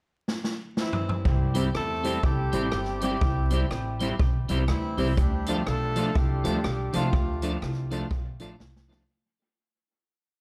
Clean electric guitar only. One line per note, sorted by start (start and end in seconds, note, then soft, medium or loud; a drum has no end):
1.55 1.68 G3 medium
1.55 1.68 C4 medium
1.55 1.69 E4 medium
1.55 1.69 G4 medium
2.05 2.17 G3 medium
2.05 2.18 C4 medium
2.05 2.18 E4 medium
2.05 2.18 G4 medium
2.53 2.66 G3 medium
2.53 2.66 C4 medium
2.53 2.67 E4 medium
2.53 2.67 G4 medium
2.74 muted clean electric guitar stroke soft
3.03 3.15 G3 medium
3.03 3.15 C4 medium
3.03 3.16 E4 medium
3.03 3.16 G4 medium
3.52 3.64 G3 medium
3.52 3.65 C4 medium
3.52 3.65 E4 medium
3.52 3.65 G4 medium
4.01 4.13 G3 medium
4.01 4.14 C4 medium
4.01 4.14 E4 medium
4.01 4.14 G4 medium
4.50 4.62 G3 medium
4.50 4.63 C4 medium
4.50 4.63 E4 medium
4.50 4.63 G4 loud
4.70 muted clean electric guitar stroke soft
4.98 5.11 G3 medium
4.98 5.11 C4 medium
4.98 5.12 E4 medium
4.98 5.12 G4 medium
5.48 5.61 F3 medium
5.48 5.61 A3 medium
5.48 5.61 D4 medium
5.48 5.61 F4 medium
5.96 6.09 F3 medium
5.96 6.10 A3 medium
5.96 6.10 D4 loud
5.96 6.10 F4 loud
6.44 6.58 F3 medium
6.44 6.58 A3 medium
6.44 6.58 D4 medium
6.44 6.59 F4 loud
6.64 muted clean electric guitar stroke soft
6.93 7.07 F3 medium
6.93 7.07 A3 medium
6.93 7.08 D4 medium
6.93 7.08 F4 medium
7.42 7.56 F3 medium
7.42 7.56 A3 medium
7.42 7.56 D4 medium
7.42 7.57 F4 medium
7.91 8.05 F3 medium
7.91 8.05 A3 medium
7.91 8.05 D4 medium
7.91 8.06 F4 loud
8.40 8.54 F3 medium
8.40 8.54 A3 medium
8.40 8.54 D4 medium
8.40 8.55 F4 medium
8.61 muted clean electric guitar stroke soft
8.88 9.02 F3 medium
8.88 9.03 A3 medium
8.88 9.03 D4 medium
8.88 9.03 F4 medium